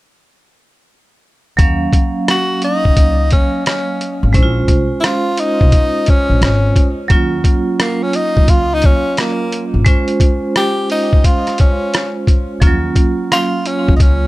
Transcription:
1.57 upright bass D#2, vibraphone F#3 A#3 C#4 F5, kick, closed hi-hat
1.93 kick, closed hi-hat
2.28 tenor saxophone F#4, cross-stick, closed hi-hat
2.62 tenor saxophone D#4, closed hi-hat
2.85 upright bass C#2, kick
2.97 kick, closed hi-hat
3.31 tenor saxophone C#4, kick, closed hi-hat
3.66 tenor saxophone C#4, cross-stick, closed hi-hat
4.01 closed hi-hat
4.23 upright bass G#1
4.33 upright bass A#1, vibraphone G#3 C#4 E4 C5, kick, closed hi-hat
4.43 vibraphone F4
4.68 upright bass C2, kick, closed hi-hat
5.00 tenor saxophone E4, cross-stick, closed hi-hat
5.05 tenor saxophone F4
5.37 tenor saxophone D#4, closed hi-hat
5.61 upright bass C2, kick
5.72 kick, closed hi-hat
6.06 tenor saxophone C#4, kick, closed hi-hat
6.30 upright bass A#1
6.41 upright bass G#1, tenor saxophone C#4, cross-stick, closed hi-hat
6.76 kick, closed hi-hat
7.08 upright bass D#2, vibraphone F#3 A#3 C#4 F4, kick, closed hi-hat
7.44 kick, closed hi-hat
7.80 tenor saxophone A#3, cross-stick, closed hi-hat
8.03 tenor saxophone C#4
8.13 tenor saxophone D#4, closed hi-hat
8.37 upright bass C#2, kick
8.48 tenor saxophone F4, kick, closed hi-hat
8.74 tenor saxophone D#4
8.82 tenor saxophone C#4, kick, closed hi-hat
9.17 tenor saxophone A#3, cross-stick, closed hi-hat
9.52 closed hi-hat
9.74 upright bass G#1
9.85 vibraphone G#3 C#4 F4 C5, kick, closed hi-hat
10.08 closed hi-hat
10.20 kick, closed hi-hat
10.56 tenor saxophone G4, cross-stick, closed hi-hat
10.90 tenor saxophone D#4, open hi-hat
11.13 kick
11.24 tenor saxophone F4, kick, closed hi-hat
11.47 cross-stick, closed hi-hat
11.58 tenor saxophone C#4, kick, closed hi-hat
11.94 cross-stick, closed hi-hat
12.27 kick, closed hi-hat
12.60 upright bass D#2, vibraphone F3 A#3 C#4 F4, kick, closed hi-hat
12.67 vibraphone F#3
12.96 kick, closed hi-hat
13.32 tenor saxophone F4, cross-stick, closed hi-hat
13.66 tenor saxophone C#4, closed hi-hat
13.88 upright bass C#2, kick
13.96 tenor saxophone D#4, kick, closed hi-hat
14.02 tenor saxophone C#4

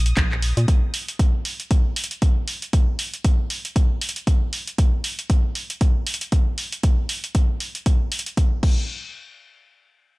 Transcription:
Already playing: fm bass A#1, violin section D#6
0.06 closed hi-hat
0.17 fm bass A#1, kick, clap, closed hi-hat
0.32 clap
0.42 open hi-hat
0.57 fm bass A#2, closed hi-hat
0.68 kick, closed hi-hat
0.94 open hi-hat
1.08 closed hi-hat
1.19 kick, closed hi-hat
1.45 open hi-hat
1.60 closed hi-hat
1.71 kick, closed hi-hat
1.96 open hi-hat
2.04 closed hi-hat
2.11 closed hi-hat
2.22 kick, closed hi-hat
2.48 open hi-hat
2.62 closed hi-hat
2.73 kick, closed hi-hat
2.99 open hi-hat
3.14 closed hi-hat
3.25 kick, closed hi-hat
3.50 open hi-hat
3.65 closed hi-hat
3.76 kick, closed hi-hat
4.01 open hi-hat
4.09 closed hi-hat
4.16 closed hi-hat
4.27 kick, closed hi-hat
4.53 open hi-hat
4.67 closed hi-hat
4.78 kick, closed hi-hat
5.04 open hi-hat
5.19 closed hi-hat
5.30 kick, closed hi-hat
5.55 open hi-hat
5.70 closed hi-hat
5.81 kick, closed hi-hat
6.07 open hi-hat
6.14 closed hi-hat
6.21 closed hi-hat
6.32 kick, closed hi-hat
6.58 open hi-hat
6.72 closed hi-hat
6.83 kick, closed hi-hat
7.09 open hi-hat
7.24 closed hi-hat
7.35 kick, closed hi-hat
7.60 open hi-hat
7.75 closed hi-hat
7.86 kick, closed hi-hat
8.12 open hi-hat
8.19 closed hi-hat
8.26 closed hi-hat
8.37 kick, closed hi-hat
8.63 kick, crash

